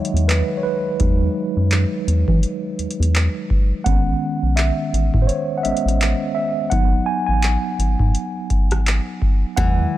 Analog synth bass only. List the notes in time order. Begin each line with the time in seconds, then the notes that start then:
0.13 E2
1.00 E2
1.57 F#2
2.07 E2
2.28 E3
2.79 E2
3.00 E2
3.86 A1
4.42 B1
4.93 A1
5.14 A2
5.65 A1
5.85 A1
6.72 G#1
7.28 A1
7.79 G#1
7.99 G#2
8.50 G#1
8.71 G#1
9.57 E2